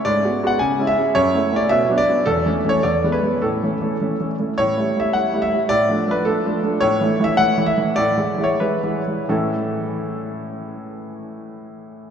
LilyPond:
<<
  \new Staff \with { instrumentName = "Grand piano" } { \time 2/4 \key a \major \tempo 4 = 105 d''8. fis''16 gis''8 e''8 | cis''8. d''16 e''8 d''8 | a'8. cis''16 d''8 b'8 | a'4. r8 |
cis''8. e''16 fis''8 e''8 | d''8. b'16 a'4 | cis''8. e''16 fis''8 e''8 | d''8. cis''16 b'4 |
<a, e cis' e' a'>2~ | <a, e cis' e' a'>2 | }
  \new Staff \with { instrumentName = "Grand piano" } { \time 2/4 \key a \major \tuplet 3/2 { gis,8 <gis b fis'>8 <gis b fis'>8 cis8 <gis cis' e'>8 <gis cis' e'>8 } | \tuplet 3/2 { fis,8 <a cis' e'>8 <a cis' e'>8 b,8 <fis b d'>8 <fis b d'>8 } | \tuplet 3/2 { e,8 <e a cis'>8 <e a cis'>8 e,8 <e gis b>8 <e gis b>8 } | \tuplet 3/2 { a,8 <e a cis'>8 <e a cis'>8 <e a cis'>8 <e a cis'>8 <e a cis'>8 } |
\tuplet 3/2 { a,8 <g a e'>8 <g a e'>8 <g a e'>8 <g a e'>8 <g a e'>8 } | \tuplet 3/2 { a,8 <f a d'>8 <f a d'>8 <f a d'>8 <f a d'>8 <f a d'>8 } | \tuplet 3/2 { a,8 <e a e'>8 <e a e'>8 <e a e'>8 <e a e'>8 <e a e'>8 } | \tuplet 3/2 { a,8 <e gis e'>8 <e gis e'>8 <e gis e'>8 <e gis e'>8 <e gis e'>8 } |
r2 | r2 | }
>>